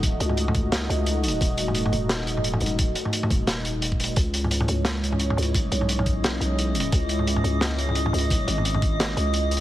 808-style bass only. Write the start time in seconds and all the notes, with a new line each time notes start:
Already playing: D#1
0.20 C#2
0.90 C#2
1.41 D#1
1.92 D#1
2.62 D#1
3.31 D#1
4.17 C#2
4.69 C#2
5.37 C#2
5.72 B1
6.41 B1
6.93 C#2
7.44 C#2
8.13 C#2
8.48 G#1
9.17 C#2